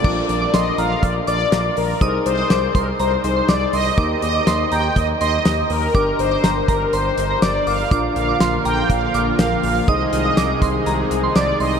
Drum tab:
CC |x-------|--------|--------|--------|
HH |-xxxxxxo|xxxxxxxo|xxxxxxxo|xxxxxxxo|
SD |--o---o-|--o---o-|--o---o-|--o---o-|
BD |o---o---|o--o----|o---o---|o--o----|

CC |--------|--------|
HH |xxxxxxxo|xxxxxxxo|
SD |--o---o-|--o---o-|
BD |o---o---|o--o----|